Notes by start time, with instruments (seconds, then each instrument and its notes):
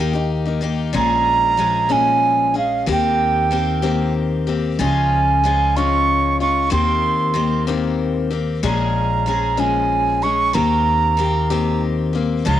Already playing: upright bass D#2, flute G5
0.00 steel-string acoustic guitar D#3 A#3 D#4 G4
0.13 steel-string acoustic guitar A#3 D#4 G4
0.45 steel-string acoustic guitar A#3 D#4 G4
0.61 steel-string acoustic guitar D#3 A#3 D#4 G4
0.93 upright bass A#1, steel-string acoustic guitar A#2 F3 G#3 C#4 G#4, flute A#5
1.57 steel-string acoustic guitar F3 G#3 C#4 G#4
1.89 steel-string acoustic guitar A#2 F3 G#3 C#4 G#4, flute G#5
2.54 steel-string acoustic guitar G#3 C#4 G#4
2.58 flute F5
2.86 upright bass D#2, steel-string acoustic guitar D#3 A#3 C4 G4
2.91 flute G5
3.51 steel-string acoustic guitar D#3 A#3 C4 G4
3.82 steel-string acoustic guitar D#3 A#3 C4 G4
4.47 steel-string acoustic guitar A#3 C4 G4
4.79 upright bass C#2, steel-string acoustic guitar C#3 F3 G#3 C#4 F4, flute G#5
5.44 steel-string acoustic guitar F3 G#3 C#4 F4
5.76 steel-string acoustic guitar C#3 F3 G#3 C#4 F4, flute C#6
6.40 steel-string acoustic guitar G#3 C#4 F4, flute C#6
6.70 upright bass D#2, steel-string acoustic guitar D#3 A#3 C4 G4, flute C6
7.34 steel-string acoustic guitar D#3 A#3 C4 G4
7.67 steel-string acoustic guitar D#3 A#3 C4 G4
8.31 steel-string acoustic guitar A#3 C4 G4
8.63 upright bass A#1, steel-string acoustic guitar A#2 F3 G#3 C#4 G#4, flute A#5
9.26 steel-string acoustic guitar F3 G#3 C#4 G#4
9.57 steel-string acoustic guitar A#2 F3 G#3 C#4 G#4, flute G#5
10.22 steel-string acoustic guitar G#3 C#4 G#4, flute C#6
10.53 upright bass D#2, steel-string acoustic guitar D#3 A#3 C4 G4, flute A#5
11.17 steel-string acoustic guitar D#3 A#3 C4 G4
11.50 steel-string acoustic guitar D#3 A#3 C4 G4
12.13 steel-string acoustic guitar A#3 C4 G4
12.45 upright bass C#2, steel-string acoustic guitar C#3 F3 G#3 C#4 F4, flute A#5